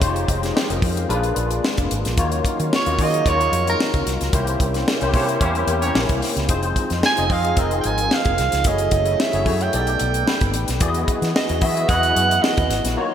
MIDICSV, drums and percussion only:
0, 0, Header, 1, 2, 480
1, 0, Start_track
1, 0, Tempo, 539568
1, 15, Time_signature, 4, 2, 24, 8
1, 11692, End_track
2, 0, Start_track
2, 0, Title_t, "Drums"
2, 14, Note_on_c, 9, 36, 115
2, 16, Note_on_c, 9, 42, 94
2, 103, Note_off_c, 9, 36, 0
2, 105, Note_off_c, 9, 42, 0
2, 142, Note_on_c, 9, 42, 49
2, 231, Note_off_c, 9, 42, 0
2, 253, Note_on_c, 9, 36, 80
2, 256, Note_on_c, 9, 42, 77
2, 342, Note_off_c, 9, 36, 0
2, 345, Note_off_c, 9, 42, 0
2, 384, Note_on_c, 9, 42, 43
2, 393, Note_on_c, 9, 38, 29
2, 473, Note_off_c, 9, 42, 0
2, 482, Note_off_c, 9, 38, 0
2, 505, Note_on_c, 9, 38, 106
2, 594, Note_off_c, 9, 38, 0
2, 624, Note_on_c, 9, 42, 49
2, 713, Note_off_c, 9, 42, 0
2, 732, Note_on_c, 9, 36, 97
2, 734, Note_on_c, 9, 46, 64
2, 821, Note_off_c, 9, 36, 0
2, 823, Note_off_c, 9, 46, 0
2, 865, Note_on_c, 9, 42, 48
2, 954, Note_off_c, 9, 42, 0
2, 979, Note_on_c, 9, 42, 74
2, 1068, Note_off_c, 9, 42, 0
2, 1098, Note_on_c, 9, 42, 42
2, 1187, Note_off_c, 9, 42, 0
2, 1211, Note_on_c, 9, 42, 64
2, 1300, Note_off_c, 9, 42, 0
2, 1339, Note_on_c, 9, 42, 51
2, 1428, Note_off_c, 9, 42, 0
2, 1463, Note_on_c, 9, 38, 102
2, 1552, Note_off_c, 9, 38, 0
2, 1579, Note_on_c, 9, 42, 51
2, 1585, Note_on_c, 9, 36, 88
2, 1668, Note_off_c, 9, 42, 0
2, 1674, Note_off_c, 9, 36, 0
2, 1699, Note_on_c, 9, 42, 79
2, 1788, Note_off_c, 9, 42, 0
2, 1824, Note_on_c, 9, 42, 57
2, 1834, Note_on_c, 9, 38, 36
2, 1913, Note_off_c, 9, 42, 0
2, 1923, Note_off_c, 9, 38, 0
2, 1934, Note_on_c, 9, 42, 94
2, 1936, Note_on_c, 9, 36, 113
2, 2023, Note_off_c, 9, 42, 0
2, 2025, Note_off_c, 9, 36, 0
2, 2061, Note_on_c, 9, 42, 48
2, 2150, Note_off_c, 9, 42, 0
2, 2176, Note_on_c, 9, 36, 82
2, 2183, Note_on_c, 9, 42, 75
2, 2265, Note_off_c, 9, 36, 0
2, 2272, Note_off_c, 9, 42, 0
2, 2309, Note_on_c, 9, 42, 44
2, 2398, Note_off_c, 9, 42, 0
2, 2428, Note_on_c, 9, 38, 115
2, 2517, Note_off_c, 9, 38, 0
2, 2547, Note_on_c, 9, 42, 48
2, 2636, Note_off_c, 9, 42, 0
2, 2656, Note_on_c, 9, 36, 92
2, 2658, Note_on_c, 9, 46, 65
2, 2745, Note_off_c, 9, 36, 0
2, 2747, Note_off_c, 9, 46, 0
2, 2792, Note_on_c, 9, 42, 50
2, 2881, Note_off_c, 9, 42, 0
2, 2897, Note_on_c, 9, 36, 97
2, 2902, Note_on_c, 9, 42, 77
2, 2986, Note_off_c, 9, 36, 0
2, 2991, Note_off_c, 9, 42, 0
2, 3030, Note_on_c, 9, 42, 40
2, 3119, Note_off_c, 9, 42, 0
2, 3139, Note_on_c, 9, 42, 67
2, 3228, Note_off_c, 9, 42, 0
2, 3269, Note_on_c, 9, 42, 48
2, 3358, Note_off_c, 9, 42, 0
2, 3385, Note_on_c, 9, 38, 111
2, 3474, Note_off_c, 9, 38, 0
2, 3501, Note_on_c, 9, 42, 49
2, 3505, Note_on_c, 9, 36, 92
2, 3590, Note_off_c, 9, 42, 0
2, 3594, Note_off_c, 9, 36, 0
2, 3618, Note_on_c, 9, 42, 78
2, 3625, Note_on_c, 9, 38, 28
2, 3707, Note_off_c, 9, 42, 0
2, 3714, Note_off_c, 9, 38, 0
2, 3744, Note_on_c, 9, 42, 57
2, 3754, Note_on_c, 9, 38, 35
2, 3832, Note_off_c, 9, 42, 0
2, 3843, Note_off_c, 9, 38, 0
2, 3852, Note_on_c, 9, 42, 96
2, 3853, Note_on_c, 9, 36, 113
2, 3941, Note_off_c, 9, 42, 0
2, 3942, Note_off_c, 9, 36, 0
2, 3977, Note_on_c, 9, 42, 48
2, 4066, Note_off_c, 9, 42, 0
2, 4092, Note_on_c, 9, 36, 83
2, 4094, Note_on_c, 9, 42, 78
2, 4181, Note_off_c, 9, 36, 0
2, 4183, Note_off_c, 9, 42, 0
2, 4220, Note_on_c, 9, 42, 43
2, 4229, Note_on_c, 9, 38, 31
2, 4309, Note_off_c, 9, 42, 0
2, 4318, Note_off_c, 9, 38, 0
2, 4340, Note_on_c, 9, 38, 111
2, 4429, Note_off_c, 9, 38, 0
2, 4457, Note_on_c, 9, 42, 50
2, 4546, Note_off_c, 9, 42, 0
2, 4568, Note_on_c, 9, 46, 61
2, 4570, Note_on_c, 9, 36, 89
2, 4657, Note_off_c, 9, 46, 0
2, 4659, Note_off_c, 9, 36, 0
2, 4702, Note_on_c, 9, 42, 50
2, 4791, Note_off_c, 9, 42, 0
2, 4811, Note_on_c, 9, 36, 104
2, 4811, Note_on_c, 9, 42, 75
2, 4900, Note_off_c, 9, 36, 0
2, 4900, Note_off_c, 9, 42, 0
2, 4938, Note_on_c, 9, 42, 38
2, 5027, Note_off_c, 9, 42, 0
2, 5049, Note_on_c, 9, 42, 71
2, 5138, Note_off_c, 9, 42, 0
2, 5178, Note_on_c, 9, 42, 53
2, 5267, Note_off_c, 9, 42, 0
2, 5296, Note_on_c, 9, 38, 109
2, 5385, Note_off_c, 9, 38, 0
2, 5418, Note_on_c, 9, 42, 49
2, 5422, Note_on_c, 9, 36, 89
2, 5507, Note_off_c, 9, 42, 0
2, 5511, Note_off_c, 9, 36, 0
2, 5536, Note_on_c, 9, 46, 77
2, 5543, Note_on_c, 9, 38, 31
2, 5625, Note_off_c, 9, 46, 0
2, 5632, Note_off_c, 9, 38, 0
2, 5665, Note_on_c, 9, 42, 58
2, 5675, Note_on_c, 9, 38, 35
2, 5754, Note_off_c, 9, 42, 0
2, 5764, Note_off_c, 9, 38, 0
2, 5771, Note_on_c, 9, 42, 96
2, 5774, Note_on_c, 9, 36, 110
2, 5860, Note_off_c, 9, 42, 0
2, 5863, Note_off_c, 9, 36, 0
2, 5895, Note_on_c, 9, 42, 48
2, 5984, Note_off_c, 9, 42, 0
2, 6013, Note_on_c, 9, 36, 82
2, 6016, Note_on_c, 9, 42, 77
2, 6102, Note_off_c, 9, 36, 0
2, 6105, Note_off_c, 9, 42, 0
2, 6139, Note_on_c, 9, 42, 44
2, 6148, Note_on_c, 9, 38, 31
2, 6228, Note_off_c, 9, 42, 0
2, 6237, Note_off_c, 9, 38, 0
2, 6256, Note_on_c, 9, 38, 114
2, 6345, Note_off_c, 9, 38, 0
2, 6377, Note_on_c, 9, 42, 47
2, 6466, Note_off_c, 9, 42, 0
2, 6493, Note_on_c, 9, 36, 95
2, 6493, Note_on_c, 9, 46, 62
2, 6582, Note_off_c, 9, 36, 0
2, 6582, Note_off_c, 9, 46, 0
2, 6624, Note_on_c, 9, 42, 50
2, 6713, Note_off_c, 9, 42, 0
2, 6731, Note_on_c, 9, 42, 77
2, 6734, Note_on_c, 9, 36, 105
2, 6820, Note_off_c, 9, 42, 0
2, 6823, Note_off_c, 9, 36, 0
2, 6859, Note_on_c, 9, 42, 37
2, 6948, Note_off_c, 9, 42, 0
2, 6971, Note_on_c, 9, 42, 66
2, 7060, Note_off_c, 9, 42, 0
2, 7097, Note_on_c, 9, 42, 51
2, 7186, Note_off_c, 9, 42, 0
2, 7216, Note_on_c, 9, 38, 102
2, 7305, Note_off_c, 9, 38, 0
2, 7336, Note_on_c, 9, 42, 47
2, 7345, Note_on_c, 9, 36, 91
2, 7425, Note_off_c, 9, 42, 0
2, 7434, Note_off_c, 9, 36, 0
2, 7455, Note_on_c, 9, 42, 79
2, 7462, Note_on_c, 9, 38, 28
2, 7544, Note_off_c, 9, 42, 0
2, 7551, Note_off_c, 9, 38, 0
2, 7580, Note_on_c, 9, 42, 57
2, 7590, Note_on_c, 9, 38, 37
2, 7669, Note_off_c, 9, 42, 0
2, 7679, Note_off_c, 9, 38, 0
2, 7689, Note_on_c, 9, 42, 98
2, 7694, Note_on_c, 9, 36, 108
2, 7778, Note_off_c, 9, 42, 0
2, 7783, Note_off_c, 9, 36, 0
2, 7815, Note_on_c, 9, 42, 50
2, 7903, Note_off_c, 9, 42, 0
2, 7929, Note_on_c, 9, 42, 79
2, 7933, Note_on_c, 9, 36, 83
2, 8018, Note_off_c, 9, 42, 0
2, 8022, Note_off_c, 9, 36, 0
2, 8056, Note_on_c, 9, 42, 42
2, 8145, Note_off_c, 9, 42, 0
2, 8183, Note_on_c, 9, 38, 109
2, 8272, Note_off_c, 9, 38, 0
2, 8302, Note_on_c, 9, 42, 49
2, 8391, Note_off_c, 9, 42, 0
2, 8415, Note_on_c, 9, 36, 89
2, 8416, Note_on_c, 9, 46, 62
2, 8504, Note_off_c, 9, 36, 0
2, 8505, Note_off_c, 9, 46, 0
2, 8547, Note_on_c, 9, 42, 51
2, 8636, Note_off_c, 9, 42, 0
2, 8656, Note_on_c, 9, 42, 81
2, 8745, Note_off_c, 9, 42, 0
2, 8780, Note_on_c, 9, 42, 42
2, 8869, Note_off_c, 9, 42, 0
2, 8891, Note_on_c, 9, 42, 70
2, 8980, Note_off_c, 9, 42, 0
2, 9022, Note_on_c, 9, 42, 53
2, 9111, Note_off_c, 9, 42, 0
2, 9141, Note_on_c, 9, 38, 103
2, 9230, Note_off_c, 9, 38, 0
2, 9259, Note_on_c, 9, 42, 49
2, 9264, Note_on_c, 9, 36, 95
2, 9348, Note_off_c, 9, 42, 0
2, 9353, Note_off_c, 9, 36, 0
2, 9373, Note_on_c, 9, 42, 77
2, 9462, Note_off_c, 9, 42, 0
2, 9499, Note_on_c, 9, 42, 61
2, 9509, Note_on_c, 9, 38, 38
2, 9588, Note_off_c, 9, 42, 0
2, 9598, Note_off_c, 9, 38, 0
2, 9612, Note_on_c, 9, 42, 95
2, 9615, Note_on_c, 9, 36, 113
2, 9700, Note_off_c, 9, 42, 0
2, 9704, Note_off_c, 9, 36, 0
2, 9736, Note_on_c, 9, 42, 49
2, 9825, Note_off_c, 9, 42, 0
2, 9856, Note_on_c, 9, 36, 81
2, 9857, Note_on_c, 9, 42, 76
2, 9945, Note_off_c, 9, 36, 0
2, 9946, Note_off_c, 9, 42, 0
2, 9983, Note_on_c, 9, 42, 42
2, 9993, Note_on_c, 9, 38, 31
2, 10072, Note_off_c, 9, 42, 0
2, 10082, Note_off_c, 9, 38, 0
2, 10105, Note_on_c, 9, 38, 111
2, 10194, Note_off_c, 9, 38, 0
2, 10223, Note_on_c, 9, 42, 50
2, 10312, Note_off_c, 9, 42, 0
2, 10331, Note_on_c, 9, 46, 67
2, 10335, Note_on_c, 9, 36, 96
2, 10420, Note_off_c, 9, 46, 0
2, 10424, Note_off_c, 9, 36, 0
2, 10469, Note_on_c, 9, 42, 53
2, 10558, Note_off_c, 9, 42, 0
2, 10574, Note_on_c, 9, 42, 77
2, 10577, Note_on_c, 9, 36, 100
2, 10663, Note_off_c, 9, 42, 0
2, 10666, Note_off_c, 9, 36, 0
2, 10703, Note_on_c, 9, 42, 40
2, 10791, Note_off_c, 9, 42, 0
2, 10821, Note_on_c, 9, 42, 68
2, 10910, Note_off_c, 9, 42, 0
2, 10952, Note_on_c, 9, 42, 52
2, 11041, Note_off_c, 9, 42, 0
2, 11065, Note_on_c, 9, 38, 111
2, 11154, Note_off_c, 9, 38, 0
2, 11184, Note_on_c, 9, 42, 47
2, 11189, Note_on_c, 9, 36, 95
2, 11273, Note_off_c, 9, 42, 0
2, 11278, Note_off_c, 9, 36, 0
2, 11302, Note_on_c, 9, 42, 77
2, 11309, Note_on_c, 9, 38, 30
2, 11391, Note_off_c, 9, 42, 0
2, 11398, Note_off_c, 9, 38, 0
2, 11428, Note_on_c, 9, 42, 59
2, 11438, Note_on_c, 9, 38, 36
2, 11517, Note_off_c, 9, 42, 0
2, 11527, Note_off_c, 9, 38, 0
2, 11692, End_track
0, 0, End_of_file